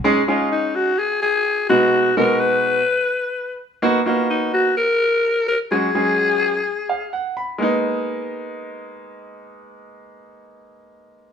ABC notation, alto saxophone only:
X:1
M:4/4
L:1/8
Q:1/4=127
K:G#dor
V:1 name="Alto saxophone"
z E D F G G2 F- | F A B4- B z | z E D F A3 A | G6 z2 |
z8 | z8 |]